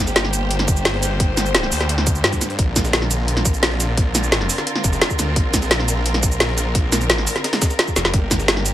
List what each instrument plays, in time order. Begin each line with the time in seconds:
Already playing: detuned saw bass G1, string section D3 A#3 G4 C5
0.07 snare, shaker
0.16 snare, closed hi-hat
0.25 snare
0.33 closed hi-hat, shaker
0.51 closed hi-hat
0.59 snare, closed hi-hat
0.68 kick, closed hi-hat, shaker
0.77 shaker
0.85 snare, closed hi-hat
0.94 snare
1.03 snare, closed hi-hat, shaker
1.20 detuned saw bass G1, kick, closed hi-hat
1.37 snare, closed hi-hat, shaker
1.46 shaker
1.55 snare, closed hi-hat
1.63 snare
1.72 detuned saw bass D2, closed hi-hat, open hi-hat, shaker
1.81 snare, closed hi-hat
1.89 closed hi-hat
1.98 snare
2.07 kick, closed hi-hat, shaker
2.15 shaker
2.24 detuned saw bass G2, snare, closed hi-hat
2.33 kick, closed hi-hat, shaker
2.41 snare, closed hi-hat, shaker
2.50 closed hi-hat
2.59 detuned saw bass A#1, string section C4 F4 A#4, kick, closed hi-hat
2.76 kick, snare, closed hi-hat, shaker
2.85 snare, shaker
2.93 snare, closed hi-hat
3.02 snare
3.11 closed hi-hat, shaker
3.28 closed hi-hat
3.37 snare, closed hi-hat
3.45 kick, closed hi-hat, shaker
3.54 shaker
3.63 snare, closed hi-hat
3.71 snare
3.80 snare, closed hi-hat, shaker
3.97 detuned saw bass A#1, kick, closed hi-hat
4.15 snare, closed hi-hat, shaker
4.23 shaker
4.32 snare, closed hi-hat
4.41 snare
4.49 closed hi-hat, open hi-hat, shaker
4.58 snare, closed hi-hat
4.67 closed hi-hat
4.76 snare
4.84 detuned saw bass F1, kick, closed hi-hat, shaker
4.93 snare, shaker
5.01 snare, closed hi-hat
5.10 kick, shaker
5.19 detuned saw bass D2, snare, closed hi-hat, shaker
5.36 detuned saw bass A#1, kick, closed hi-hat
5.53 kick, snare, closed hi-hat, shaker
5.62 snare, shaker
5.71 snare, closed hi-hat
5.80 snare
5.88 closed hi-hat, shaker
6.06 closed hi-hat
6.14 snare, closed hi-hat
6.23 kick, closed hi-hat, shaker
6.32 shaker
6.40 snare, closed hi-hat
6.49 snare
6.58 snare, closed hi-hat, shaker
6.75 detuned saw bass A#1, kick, closed hi-hat
6.92 snare, closed hi-hat, shaker
7.01 shaker
7.10 snare, closed hi-hat
7.18 snare
7.27 closed hi-hat, open hi-hat, shaker
7.36 snare, closed hi-hat
7.44 snare, closed hi-hat
7.53 snare, closed hi-hat
7.62 kick, snare, closed hi-hat, shaker
7.70 snare, shaker
7.79 snare, closed hi-hat
7.88 kick, shaker
7.96 detuned saw bass F1, snare, closed hi-hat, shaker
8.05 snare, closed hi-hat
8.14 detuned saw bass G1, string section D3 A#3 G4, kick, closed hi-hat
8.31 kick, snare, closed hi-hat, shaker
8.40 snare, shaker
8.48 snare, closed hi-hat
8.57 snare
8.66 closed hi-hat, shaker